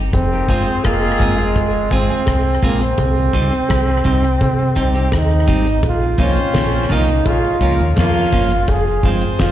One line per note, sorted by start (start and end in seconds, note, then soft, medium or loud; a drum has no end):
0.00 0.11 G1 medium
0.13 0.46 F1 loud
0.13 0.87 C4 loud
0.13 kick loud
0.13 closed hi-hat medium
0.13 cowbell medium
0.31 0.45 A#3 medium
0.31 0.45 D#4 medium
0.31 0.45 G4 medium
0.31 0.45 A#4 medium
0.49 0.66 G1 medium
0.49 0.67 G#3 medium
0.49 0.77 C4 medium
0.49 0.67 C4 medium
0.49 0.77 F4 medium
0.49 0.67 F4 medium
0.49 0.78 G#4 medium
0.49 0.68 G#4 medium
0.49 0.77 C5 medium
0.49 kick medium
0.49 closed hi-hat medium
0.67 closed hi-hat medium
0.84 1.18 F1 medium
0.84 1.87 G#3 loud
0.84 1.41 A#3 loud
0.84 1.87 C4 loud
0.84 1.87 F4 loud
0.84 1.87 G#4 loud
0.84 kick loud
0.84 cross-stick loud
0.84 closed hi-hat loud
0.84 cowbell medium
1.18 1.56 G1 loud
1.18 1.38 G#3 medium
1.18 1.39 C4 medium
1.18 1.39 F4 medium
1.18 1.39 G#4 medium
1.18 kick medium
1.18 cross-stick medium
1.18 closed hi-hat medium
1.39 1.94 G#3 loud
1.39 closed hi-hat soft
1.56 1.89 F1 loud
1.56 kick loud
1.56 closed hi-hat medium
1.56 cowbell medium
1.91 2.08 G#1 medium
1.91 2.10 G#3 medium
1.91 2.10 C4 medium
1.91 2.67 C4 loud
1.91 2.09 F4 medium
1.91 2.09 G#4 medium
1.91 kick medium
1.91 closed hi-hat medium
2.10 2.24 G#3 soft
2.10 2.24 C4 medium
2.10 2.24 F4 medium
2.10 2.23 G#4 medium
2.10 closed hi-hat soft
2.26 2.60 C2 medium
2.26 kick loud
2.26 cross-stick loud
2.26 closed hi-hat medium
2.26 cowbell medium
2.62 2.95 A#1 medium
2.62 2.81 G#3 medium
2.62 2.84 A#3 medium
2.62 2.81 C4 loud
2.62 2.81 F4 medium
2.62 2.82 G#4 loud
2.62 kick medium
2.62 open hi-hat medium
2.82 5.13 C4 loud
2.82 closed hi-hat soft
2.98 3.31 C2 loud
2.98 kick loud
2.98 closed hi-hat medium
2.98 cowbell medium
3.33 3.50 C#2 medium
3.33 3.52 G3 medium
3.33 3.52 C4 medium
3.33 3.52 D#4 medium
3.33 3.52 G4 medium
3.33 kick medium
3.33 closed hi-hat medium
3.52 closed hi-hat soft
3.69 4.03 C2 medium
3.69 kick loud
3.69 cross-stick loud
3.69 closed hi-hat medium
3.69 cowbell medium
4.04 4.38 C2 medium
4.04 4.23 G3 medium
4.04 4.23 C4 medium
4.04 4.23 D#4 medium
4.04 4.24 G4 medium
4.04 kick medium
4.04 closed hi-hat medium
4.24 closed hi-hat soft
4.41 4.74 C3 loud
4.41 kick loud
4.41 closed hi-hat loud
4.41 cowbell medium
4.76 5.09 C2 medium
4.76 4.94 G3 medium
4.76 4.94 C4 medium
4.76 4.94 D#4 medium
4.76 4.93 G4 medium
4.76 kick medium
4.76 closed hi-hat medium
4.95 5.09 G3 soft
4.95 5.09 C4 soft
4.95 5.08 D#4 medium
4.95 5.08 G4 medium
4.95 closed hi-hat soft
5.12 5.45 D#2 medium
5.12 kick loud
5.12 cross-stick loud
5.12 closed hi-hat medium
5.12 cowbell medium
5.17 5.82 D#4 medium
5.47 5.81 G#1 loud
5.47 5.65 G3 medium
5.47 5.66 C4 medium
5.47 5.66 D#4 medium
5.47 5.66 G4 medium
5.47 kick medium
5.47 closed hi-hat medium
5.67 closed hi-hat soft
5.83 6.16 A#1 loud
5.83 kick loud
5.83 closed hi-hat medium
5.83 cowbell medium
5.88 6.23 F4 medium
6.18 6.36 C2 medium
6.18 6.37 F3 medium
6.18 6.37 A#3 medium
6.18 6.86 C4 medium
6.18 6.86 C#4 medium
6.18 6.37 C#4 medium
6.18 6.94 C#4 medium
6.18 6.86 F4 medium
6.18 6.37 F4 medium
6.18 6.86 C5 loud
6.18 kick medium
6.18 closed hi-hat medium
6.37 closed hi-hat soft
6.54 6.88 A#1 loud
6.54 kick loud
6.54 snare loud
6.54 closed hi-hat medium
6.54 cowbell medium
6.88 7.23 C2 medium
6.88 7.09 F3 medium
6.88 7.04 A#3 medium
6.88 7.09 A#3 medium
6.88 7.04 C#4 medium
6.88 7.09 C#4 medium
6.88 7.04 F4 medium
6.88 7.09 F4 medium
6.88 7.04 A#4 medium
6.88 kick medium
6.88 closed hi-hat medium
6.93 7.31 D#4 loud
7.09 closed hi-hat medium
7.25 7.43 A#1 medium
7.25 7.55 G#3 medium
7.25 7.55 C#4 medium
7.25 7.55 F4 medium
7.25 7.84 F4 loud
7.25 7.55 G#4 medium
7.25 kick loud
7.25 closed hi-hat loud
7.25 cowbell medium
7.45 muted clean electric guitar stroke medium
7.61 7.78 C#2 medium
7.61 7.80 F3 medium
7.61 7.90 A#3 medium
7.61 7.80 A#3 medium
7.61 7.90 C#4 medium
7.61 7.80 C#4 medium
7.61 7.90 F4 medium
7.61 7.80 F4 medium
7.61 7.90 A#4 medium
7.61 kick medium
7.61 closed hi-hat medium
7.79 7.96 D#2 medium
7.79 closed hi-hat soft
7.96 8.30 F2 medium
7.96 8.48 F3 loud
7.96 8.47 A#3 loud
7.96 8.48 C#4 loud
7.96 8.48 F4 loud
7.96 kick loud
7.96 snare loud
7.96 closed hi-hat medium
7.96 cowbell medium
8.01 8.72 F4 loud
8.32 8.65 G1 medium
8.32 8.51 F3 medium
8.32 8.51 A#3 medium
8.32 8.51 C#4 medium
8.32 8.51 F4 loud
8.32 kick medium
8.32 open hi-hat medium
8.51 closed hi-hat medium
8.68 9.01 F1 loud
8.68 9.14 G#4 loud
8.68 kick loud
8.68 closed hi-hat medium
8.68 cowbell medium
9.03 9.21 G1 loud
9.03 9.23 F3 medium
9.03 9.23 G#3 medium
9.03 9.23 C4 medium
9.03 9.52 C4 medium
9.03 9.52 F4 medium
9.03 9.23 F4 medium
9.03 9.52 G#4 medium
9.03 9.52 C5 medium
9.03 kick medium
9.03 closed hi-hat medium
9.21 closed hi-hat soft
9.39 9.52 F1 medium
9.39 9.52 F4 loud
9.39 kick loud
9.39 snare loud
9.39 closed hi-hat medium
9.39 cowbell medium